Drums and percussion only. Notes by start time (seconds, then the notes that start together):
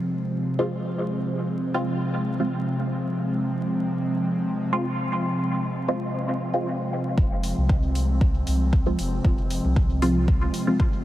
7.18 kick
7.43 open hi-hat
7.69 kick
7.95 open hi-hat
8.21 kick
8.47 open hi-hat
8.73 kick
8.99 open hi-hat
9.25 kick
9.50 open hi-hat
9.76 kick
10.02 open hi-hat
10.28 kick
10.54 open hi-hat
10.80 kick